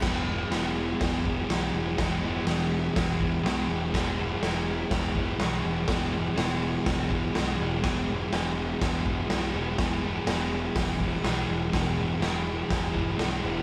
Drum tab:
CC |x-------|--------|--------|--------|
HH |--o-o-o-|o-o-o-o-|o-o-o-o-|o-o-o-o-|
SD |o-o-o-o-|o-o-o-o-|o-o-o-o-|o-o-o-o-|
BD |o---oo--|o---oo--|o---oo--|o---oo--|

CC |--------|--------|--------|
HH |o-o-o-o-|o-o-o-o-|o-o-o-o-|
SD |o-o-o-o-|o-o-o-o-|o-o-o-o-|
BD |o---oo--|o---oo--|o---oo--|